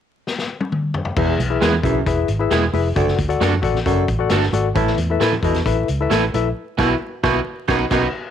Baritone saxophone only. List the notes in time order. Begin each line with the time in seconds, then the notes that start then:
1.18 E2
1.84 F#2
2.96 D2
3.86 F#2
4.75 A2
5.43 B2
6.79 B2
7.23 B2
7.68 F#2
7.91 F#2